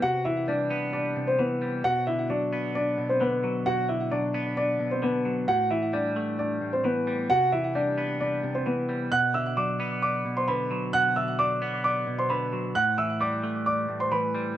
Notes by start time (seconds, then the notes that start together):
0.02 C3 F#4 F#5
0.25 E3 E4 E5
0.48 G3 D4 D5
0.70 B3
0.93 D4 D5
1.16 C3
1.27 C4 C5
1.39 E3 B3 B4
1.62 G3
1.84 B2 F#4 F#5
2.07 D3 E4 E5
2.30 F#3 D4 D5
2.53 B3
2.75 D4 D5
2.98 B2
3.09 C4 C5
3.21 D3 B3 B4
3.43 F#3
3.66 B2 F#4 F#5
3.89 D3 E4 E5
4.11 F#3 D4 D5
4.34 B3
4.57 D4 D5
4.80 B2
4.91 C4 C5
5.02 D3 B3 B4
5.25 F#3
5.48 A2 F#4 F#5
5.71 E3 E4 E5
5.93 G3 D4 D5
6.16 A3
6.39 D4 D5
6.61 A2
6.73 C4 C5
6.84 E3 B3 B4
7.07 G3
7.30 C3 F#4 F#5
7.52 E3 E4 E5
7.75 G3 D4 D5
7.98 B3
8.21 D4 D5
8.43 C3
8.55 C4 C5
8.66 E3 B3 B4
8.89 G3
9.11 B2 F#5 F#6
9.34 D3 E5 E6
9.57 F#3 D5 D6
9.80 B3
10.02 D5 D6
10.25 B2
10.37 C5 C6
10.48 D3 B4 B5
10.71 F#3
10.93 B2 F#5 F#6
11.16 D3 E5 E6
11.39 F#3 D5 D6
11.62 B3
11.84 D5 D6
12.07 B2
12.19 C5 C6
12.30 D3 B4 B5
12.53 F#3
12.75 A2 F#5 F#6
12.98 E3 E5 E6
13.20 G3 D5 D6
13.43 A3
13.66 D5 D6
13.89 A2
14.00 C5 C6
14.12 E3 B4 B5
14.35 G3